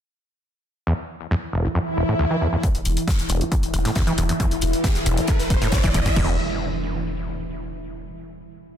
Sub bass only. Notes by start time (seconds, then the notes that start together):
2.75 E1
2.85 E1
3.19 E1
3.30 E1
3.63 E1
3.74 E1
4.07 E1
4.18 E1
4.51 E1
4.62 E1
4.95 E1
5.06 E1
5.40 E1
5.50 E1
5.84 E1
5.94 E1
6.16 E1